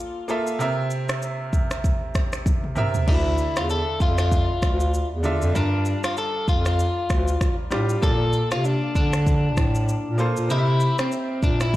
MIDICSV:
0, 0, Header, 1, 5, 480
1, 0, Start_track
1, 0, Tempo, 618557
1, 468, Time_signature, 4, 2, 24, 8
1, 9130, End_track
2, 0, Start_track
2, 0, Title_t, "Clean electric guitar"
2, 0, Program_c, 0, 27
2, 0, Note_on_c, 0, 65, 82
2, 201, Note_off_c, 0, 65, 0
2, 2397, Note_on_c, 0, 64, 94
2, 2777, Note_on_c, 0, 65, 86
2, 2783, Note_off_c, 0, 64, 0
2, 2873, Note_off_c, 0, 65, 0
2, 2876, Note_on_c, 0, 69, 100
2, 3113, Note_off_c, 0, 69, 0
2, 3116, Note_on_c, 0, 65, 88
2, 3245, Note_off_c, 0, 65, 0
2, 3255, Note_on_c, 0, 65, 80
2, 3940, Note_off_c, 0, 65, 0
2, 4315, Note_on_c, 0, 62, 92
2, 4665, Note_off_c, 0, 62, 0
2, 4695, Note_on_c, 0, 65, 86
2, 4785, Note_off_c, 0, 65, 0
2, 4797, Note_on_c, 0, 69, 102
2, 5033, Note_off_c, 0, 69, 0
2, 5036, Note_on_c, 0, 65, 91
2, 5162, Note_off_c, 0, 65, 0
2, 5176, Note_on_c, 0, 65, 84
2, 5861, Note_off_c, 0, 65, 0
2, 6234, Note_on_c, 0, 69, 110
2, 6584, Note_off_c, 0, 69, 0
2, 6611, Note_on_c, 0, 65, 90
2, 6712, Note_off_c, 0, 65, 0
2, 6712, Note_on_c, 0, 62, 87
2, 6943, Note_off_c, 0, 62, 0
2, 6952, Note_on_c, 0, 62, 85
2, 7879, Note_off_c, 0, 62, 0
2, 8158, Note_on_c, 0, 64, 110
2, 8506, Note_off_c, 0, 64, 0
2, 8538, Note_on_c, 0, 60, 88
2, 8850, Note_off_c, 0, 60, 0
2, 8875, Note_on_c, 0, 62, 92
2, 9011, Note_off_c, 0, 62, 0
2, 9014, Note_on_c, 0, 64, 89
2, 9130, Note_off_c, 0, 64, 0
2, 9130, End_track
3, 0, Start_track
3, 0, Title_t, "Grand piano"
3, 0, Program_c, 1, 0
3, 0, Control_c, 1, 64, 127
3, 0, Note_on_c, 1, 58, 75
3, 0, Note_on_c, 1, 65, 68
3, 0, Note_on_c, 1, 69, 70
3, 0, Note_on_c, 1, 74, 80
3, 217, Note_off_c, 1, 58, 0
3, 217, Note_on_c, 1, 58, 83
3, 224, Note_off_c, 1, 65, 0
3, 224, Note_on_c, 1, 65, 79
3, 230, Note_off_c, 1, 69, 0
3, 230, Note_on_c, 1, 69, 80
3, 237, Note_on_c, 1, 76, 91
3, 390, Note_off_c, 1, 58, 0
3, 393, Note_off_c, 1, 65, 0
3, 397, Note_off_c, 1, 69, 0
3, 400, Note_off_c, 1, 76, 0
3, 457, Note_on_c, 1, 48, 92
3, 464, Note_on_c, 1, 60, 79
3, 470, Note_on_c, 1, 70, 80
3, 477, Control_c, 1, 64, 0
3, 477, Note_on_c, 1, 76, 93
3, 480, Note_off_c, 1, 74, 0
3, 592, Control_c, 1, 64, 127
3, 1094, Note_off_c, 1, 48, 0
3, 1097, Note_off_c, 1, 60, 0
3, 1101, Note_off_c, 1, 70, 0
3, 1104, Note_off_c, 1, 76, 0
3, 2137, Note_on_c, 1, 48, 79
3, 2144, Note_on_c, 1, 60, 74
3, 2150, Note_on_c, 1, 70, 79
3, 2157, Note_on_c, 1, 76, 91
3, 2310, Note_off_c, 1, 48, 0
3, 2313, Note_off_c, 1, 60, 0
3, 2317, Note_off_c, 1, 70, 0
3, 2320, Note_off_c, 1, 76, 0
3, 2378, Note_on_c, 1, 50, 75
3, 2385, Note_on_c, 1, 62, 66
3, 2391, Note_on_c, 1, 64, 69
3, 2398, Note_on_c, 1, 76, 83
3, 2400, Control_c, 1, 64, 0
3, 2522, Control_c, 1, 64, 127
3, 3015, Note_off_c, 1, 50, 0
3, 3018, Note_off_c, 1, 62, 0
3, 3021, Note_off_c, 1, 64, 0
3, 3024, Note_off_c, 1, 76, 0
3, 4058, Note_on_c, 1, 50, 86
3, 4064, Note_on_c, 1, 62, 77
3, 4071, Note_on_c, 1, 65, 76
3, 4076, Note_on_c, 1, 76, 90
3, 4230, Note_off_c, 1, 50, 0
3, 4233, Note_off_c, 1, 62, 0
3, 4237, Note_off_c, 1, 65, 0
3, 4240, Note_off_c, 1, 76, 0
3, 4297, Note_on_c, 1, 55, 72
3, 4303, Note_on_c, 1, 62, 70
3, 4310, Note_on_c, 1, 65, 68
3, 4316, Note_on_c, 1, 70, 79
3, 4317, Control_c, 1, 64, 0
3, 4468, Control_c, 1, 64, 127
3, 4934, Note_off_c, 1, 55, 0
3, 4937, Note_off_c, 1, 62, 0
3, 4940, Note_off_c, 1, 65, 0
3, 4944, Note_off_c, 1, 70, 0
3, 5978, Note_on_c, 1, 55, 83
3, 5985, Note_on_c, 1, 62, 77
3, 5991, Note_on_c, 1, 65, 76
3, 5998, Note_on_c, 1, 67, 93
3, 6151, Note_off_c, 1, 55, 0
3, 6154, Note_off_c, 1, 62, 0
3, 6157, Note_off_c, 1, 65, 0
3, 6161, Note_off_c, 1, 67, 0
3, 6219, Note_on_c, 1, 58, 77
3, 6226, Note_on_c, 1, 65, 68
3, 6232, Note_on_c, 1, 69, 69
3, 6237, Control_c, 1, 64, 0
3, 6238, Note_on_c, 1, 74, 80
3, 6368, Control_c, 1, 64, 127
3, 6855, Note_off_c, 1, 58, 0
3, 6858, Note_off_c, 1, 65, 0
3, 6861, Note_off_c, 1, 69, 0
3, 6864, Note_off_c, 1, 74, 0
3, 7898, Note_on_c, 1, 58, 84
3, 7905, Note_on_c, 1, 65, 77
3, 7911, Note_on_c, 1, 69, 74
3, 7918, Note_on_c, 1, 72, 92
3, 8071, Note_off_c, 1, 58, 0
3, 8074, Note_off_c, 1, 65, 0
3, 8077, Note_off_c, 1, 69, 0
3, 8080, Note_off_c, 1, 72, 0
3, 8137, Note_on_c, 1, 60, 75
3, 8144, Note_on_c, 1, 67, 69
3, 8150, Note_on_c, 1, 70, 70
3, 8157, Control_c, 1, 64, 0
3, 8158, Note_on_c, 1, 75, 64
3, 8207, Note_on_c, 1, 76, 80
3, 8211, Note_off_c, 1, 75, 0
3, 8277, Control_c, 1, 64, 127
3, 8774, Note_off_c, 1, 60, 0
3, 8778, Note_off_c, 1, 67, 0
3, 8781, Note_off_c, 1, 70, 0
3, 8809, Note_off_c, 1, 76, 0
3, 9130, End_track
4, 0, Start_track
4, 0, Title_t, "Bass clarinet"
4, 0, Program_c, 2, 71
4, 2388, Note_on_c, 2, 38, 105
4, 2701, Note_off_c, 2, 38, 0
4, 2767, Note_on_c, 2, 40, 81
4, 2965, Note_off_c, 2, 40, 0
4, 3106, Note_on_c, 2, 41, 90
4, 3503, Note_off_c, 2, 41, 0
4, 3588, Note_on_c, 2, 38, 92
4, 3901, Note_off_c, 2, 38, 0
4, 3968, Note_on_c, 2, 40, 83
4, 4166, Note_off_c, 2, 40, 0
4, 4208, Note_on_c, 2, 41, 91
4, 4291, Note_off_c, 2, 41, 0
4, 4309, Note_on_c, 2, 43, 102
4, 4622, Note_off_c, 2, 43, 0
4, 5027, Note_on_c, 2, 41, 89
4, 5341, Note_off_c, 2, 41, 0
4, 5509, Note_on_c, 2, 38, 92
4, 5707, Note_off_c, 2, 38, 0
4, 5989, Note_on_c, 2, 45, 92
4, 6187, Note_off_c, 2, 45, 0
4, 6229, Note_on_c, 2, 46, 107
4, 6542, Note_off_c, 2, 46, 0
4, 6608, Note_on_c, 2, 48, 84
4, 6806, Note_off_c, 2, 48, 0
4, 6948, Note_on_c, 2, 50, 91
4, 7428, Note_on_c, 2, 45, 93
4, 7440, Note_off_c, 2, 50, 0
4, 7741, Note_off_c, 2, 45, 0
4, 7808, Note_on_c, 2, 46, 92
4, 8006, Note_off_c, 2, 46, 0
4, 8049, Note_on_c, 2, 46, 83
4, 8131, Note_off_c, 2, 46, 0
4, 8149, Note_on_c, 2, 48, 102
4, 8462, Note_off_c, 2, 48, 0
4, 8867, Note_on_c, 2, 46, 86
4, 9130, Note_off_c, 2, 46, 0
4, 9130, End_track
5, 0, Start_track
5, 0, Title_t, "Drums"
5, 222, Note_on_c, 9, 82, 45
5, 299, Note_off_c, 9, 82, 0
5, 364, Note_on_c, 9, 82, 72
5, 441, Note_off_c, 9, 82, 0
5, 468, Note_on_c, 9, 82, 77
5, 546, Note_off_c, 9, 82, 0
5, 702, Note_on_c, 9, 82, 62
5, 779, Note_off_c, 9, 82, 0
5, 845, Note_on_c, 9, 82, 65
5, 848, Note_on_c, 9, 37, 116
5, 850, Note_on_c, 9, 26, 88
5, 922, Note_off_c, 9, 82, 0
5, 926, Note_off_c, 9, 37, 0
5, 928, Note_off_c, 9, 26, 0
5, 949, Note_on_c, 9, 82, 66
5, 1026, Note_off_c, 9, 82, 0
5, 1187, Note_on_c, 9, 36, 80
5, 1189, Note_on_c, 9, 82, 54
5, 1264, Note_off_c, 9, 36, 0
5, 1267, Note_off_c, 9, 82, 0
5, 1325, Note_on_c, 9, 82, 74
5, 1327, Note_on_c, 9, 37, 95
5, 1329, Note_on_c, 9, 26, 74
5, 1403, Note_off_c, 9, 82, 0
5, 1404, Note_off_c, 9, 37, 0
5, 1407, Note_off_c, 9, 26, 0
5, 1429, Note_on_c, 9, 36, 84
5, 1432, Note_on_c, 9, 82, 78
5, 1507, Note_off_c, 9, 36, 0
5, 1509, Note_off_c, 9, 82, 0
5, 1666, Note_on_c, 9, 82, 53
5, 1668, Note_on_c, 9, 36, 84
5, 1670, Note_on_c, 9, 37, 96
5, 1672, Note_on_c, 9, 26, 78
5, 1744, Note_off_c, 9, 82, 0
5, 1746, Note_off_c, 9, 36, 0
5, 1747, Note_off_c, 9, 37, 0
5, 1749, Note_off_c, 9, 26, 0
5, 1806, Note_on_c, 9, 82, 77
5, 1808, Note_on_c, 9, 37, 89
5, 1810, Note_on_c, 9, 26, 72
5, 1883, Note_off_c, 9, 82, 0
5, 1885, Note_off_c, 9, 37, 0
5, 1887, Note_off_c, 9, 26, 0
5, 1908, Note_on_c, 9, 36, 94
5, 1909, Note_on_c, 9, 48, 56
5, 1913, Note_on_c, 9, 82, 79
5, 1986, Note_off_c, 9, 36, 0
5, 1986, Note_off_c, 9, 48, 0
5, 1990, Note_off_c, 9, 82, 0
5, 2048, Note_on_c, 9, 47, 58
5, 2125, Note_off_c, 9, 47, 0
5, 2142, Note_on_c, 9, 82, 46
5, 2148, Note_on_c, 9, 45, 83
5, 2220, Note_off_c, 9, 82, 0
5, 2226, Note_off_c, 9, 45, 0
5, 2284, Note_on_c, 9, 82, 76
5, 2287, Note_on_c, 9, 43, 87
5, 2362, Note_off_c, 9, 82, 0
5, 2365, Note_off_c, 9, 43, 0
5, 2388, Note_on_c, 9, 36, 111
5, 2388, Note_on_c, 9, 49, 85
5, 2465, Note_off_c, 9, 49, 0
5, 2466, Note_off_c, 9, 36, 0
5, 2622, Note_on_c, 9, 82, 61
5, 2699, Note_off_c, 9, 82, 0
5, 2765, Note_on_c, 9, 82, 66
5, 2768, Note_on_c, 9, 37, 109
5, 2770, Note_on_c, 9, 26, 89
5, 2842, Note_off_c, 9, 82, 0
5, 2846, Note_off_c, 9, 37, 0
5, 2848, Note_off_c, 9, 26, 0
5, 2868, Note_on_c, 9, 82, 65
5, 2946, Note_off_c, 9, 82, 0
5, 3106, Note_on_c, 9, 36, 85
5, 3107, Note_on_c, 9, 82, 54
5, 3184, Note_off_c, 9, 36, 0
5, 3185, Note_off_c, 9, 82, 0
5, 3244, Note_on_c, 9, 82, 73
5, 3246, Note_on_c, 9, 37, 94
5, 3248, Note_on_c, 9, 26, 74
5, 3321, Note_off_c, 9, 82, 0
5, 3323, Note_off_c, 9, 37, 0
5, 3325, Note_off_c, 9, 26, 0
5, 3349, Note_on_c, 9, 36, 89
5, 3351, Note_on_c, 9, 82, 81
5, 3426, Note_off_c, 9, 36, 0
5, 3428, Note_off_c, 9, 82, 0
5, 3586, Note_on_c, 9, 82, 53
5, 3588, Note_on_c, 9, 36, 86
5, 3590, Note_on_c, 9, 37, 95
5, 3592, Note_on_c, 9, 26, 76
5, 3664, Note_off_c, 9, 82, 0
5, 3666, Note_off_c, 9, 36, 0
5, 3668, Note_off_c, 9, 37, 0
5, 3670, Note_off_c, 9, 26, 0
5, 3727, Note_on_c, 9, 82, 78
5, 3804, Note_off_c, 9, 82, 0
5, 3833, Note_on_c, 9, 82, 80
5, 3911, Note_off_c, 9, 82, 0
5, 4063, Note_on_c, 9, 82, 45
5, 4141, Note_off_c, 9, 82, 0
5, 4205, Note_on_c, 9, 82, 75
5, 4282, Note_off_c, 9, 82, 0
5, 4309, Note_on_c, 9, 82, 76
5, 4386, Note_off_c, 9, 82, 0
5, 4542, Note_on_c, 9, 82, 64
5, 4620, Note_off_c, 9, 82, 0
5, 4684, Note_on_c, 9, 82, 67
5, 4688, Note_on_c, 9, 37, 110
5, 4690, Note_on_c, 9, 26, 91
5, 4762, Note_off_c, 9, 82, 0
5, 4765, Note_off_c, 9, 37, 0
5, 4767, Note_off_c, 9, 26, 0
5, 4789, Note_on_c, 9, 82, 68
5, 4866, Note_off_c, 9, 82, 0
5, 5027, Note_on_c, 9, 36, 85
5, 5028, Note_on_c, 9, 82, 55
5, 5105, Note_off_c, 9, 36, 0
5, 5105, Note_off_c, 9, 82, 0
5, 5165, Note_on_c, 9, 82, 72
5, 5167, Note_on_c, 9, 37, 95
5, 5169, Note_on_c, 9, 26, 75
5, 5243, Note_off_c, 9, 82, 0
5, 5245, Note_off_c, 9, 37, 0
5, 5247, Note_off_c, 9, 26, 0
5, 5271, Note_on_c, 9, 82, 75
5, 5348, Note_off_c, 9, 82, 0
5, 5507, Note_on_c, 9, 82, 52
5, 5509, Note_on_c, 9, 36, 89
5, 5510, Note_on_c, 9, 37, 97
5, 5512, Note_on_c, 9, 26, 76
5, 5584, Note_off_c, 9, 82, 0
5, 5587, Note_off_c, 9, 36, 0
5, 5588, Note_off_c, 9, 37, 0
5, 5590, Note_off_c, 9, 26, 0
5, 5647, Note_on_c, 9, 82, 80
5, 5724, Note_off_c, 9, 82, 0
5, 5749, Note_on_c, 9, 36, 96
5, 5749, Note_on_c, 9, 37, 94
5, 5752, Note_on_c, 9, 26, 72
5, 5753, Note_on_c, 9, 82, 79
5, 5827, Note_off_c, 9, 36, 0
5, 5827, Note_off_c, 9, 37, 0
5, 5829, Note_off_c, 9, 26, 0
5, 5831, Note_off_c, 9, 82, 0
5, 5984, Note_on_c, 9, 82, 47
5, 5990, Note_on_c, 9, 37, 88
5, 5992, Note_on_c, 9, 26, 72
5, 6061, Note_off_c, 9, 82, 0
5, 6068, Note_off_c, 9, 37, 0
5, 6070, Note_off_c, 9, 26, 0
5, 6125, Note_on_c, 9, 82, 74
5, 6203, Note_off_c, 9, 82, 0
5, 6229, Note_on_c, 9, 36, 109
5, 6229, Note_on_c, 9, 82, 76
5, 6307, Note_off_c, 9, 36, 0
5, 6307, Note_off_c, 9, 82, 0
5, 6462, Note_on_c, 9, 82, 59
5, 6540, Note_off_c, 9, 82, 0
5, 6605, Note_on_c, 9, 82, 66
5, 6609, Note_on_c, 9, 37, 120
5, 6611, Note_on_c, 9, 26, 93
5, 6683, Note_off_c, 9, 82, 0
5, 6686, Note_off_c, 9, 37, 0
5, 6688, Note_off_c, 9, 26, 0
5, 6710, Note_on_c, 9, 82, 69
5, 6787, Note_off_c, 9, 82, 0
5, 6947, Note_on_c, 9, 36, 84
5, 6949, Note_on_c, 9, 82, 55
5, 7025, Note_off_c, 9, 36, 0
5, 7026, Note_off_c, 9, 82, 0
5, 7085, Note_on_c, 9, 82, 73
5, 7087, Note_on_c, 9, 37, 95
5, 7089, Note_on_c, 9, 26, 77
5, 7163, Note_off_c, 9, 82, 0
5, 7164, Note_off_c, 9, 37, 0
5, 7167, Note_off_c, 9, 26, 0
5, 7189, Note_on_c, 9, 36, 88
5, 7191, Note_on_c, 9, 82, 77
5, 7267, Note_off_c, 9, 36, 0
5, 7269, Note_off_c, 9, 82, 0
5, 7426, Note_on_c, 9, 82, 51
5, 7429, Note_on_c, 9, 36, 88
5, 7429, Note_on_c, 9, 37, 95
5, 7432, Note_on_c, 9, 26, 78
5, 7503, Note_off_c, 9, 82, 0
5, 7506, Note_off_c, 9, 36, 0
5, 7507, Note_off_c, 9, 37, 0
5, 7509, Note_off_c, 9, 26, 0
5, 7566, Note_on_c, 9, 82, 80
5, 7643, Note_off_c, 9, 82, 0
5, 7673, Note_on_c, 9, 82, 84
5, 7750, Note_off_c, 9, 82, 0
5, 7903, Note_on_c, 9, 82, 46
5, 7981, Note_off_c, 9, 82, 0
5, 8044, Note_on_c, 9, 82, 78
5, 8122, Note_off_c, 9, 82, 0
5, 8148, Note_on_c, 9, 82, 76
5, 8226, Note_off_c, 9, 82, 0
5, 8382, Note_on_c, 9, 82, 63
5, 8460, Note_off_c, 9, 82, 0
5, 8525, Note_on_c, 9, 82, 67
5, 8528, Note_on_c, 9, 37, 116
5, 8530, Note_on_c, 9, 26, 91
5, 8602, Note_off_c, 9, 82, 0
5, 8606, Note_off_c, 9, 37, 0
5, 8608, Note_off_c, 9, 26, 0
5, 8628, Note_on_c, 9, 82, 63
5, 8706, Note_off_c, 9, 82, 0
5, 8867, Note_on_c, 9, 36, 82
5, 8868, Note_on_c, 9, 82, 54
5, 8944, Note_off_c, 9, 36, 0
5, 8945, Note_off_c, 9, 82, 0
5, 9004, Note_on_c, 9, 82, 76
5, 9006, Note_on_c, 9, 37, 90
5, 9008, Note_on_c, 9, 26, 74
5, 9082, Note_off_c, 9, 82, 0
5, 9083, Note_off_c, 9, 37, 0
5, 9086, Note_off_c, 9, 26, 0
5, 9130, End_track
0, 0, End_of_file